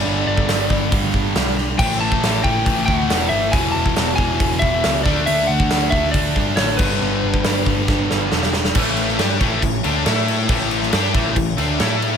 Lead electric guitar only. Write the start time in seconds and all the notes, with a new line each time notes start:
Already playing: D5
0.27 D5
1.79 G5
2.00 A5
2.44 G5
2.86 G5
2.97 F#5
3.29 E5
3.52 G#5
3.72 A5
4.16 G#5
4.59 E5
5.03 D5
5.26 E5
5.47 F#5
5.90 E5
6.12 D5
6.56 C#5
6.77 B4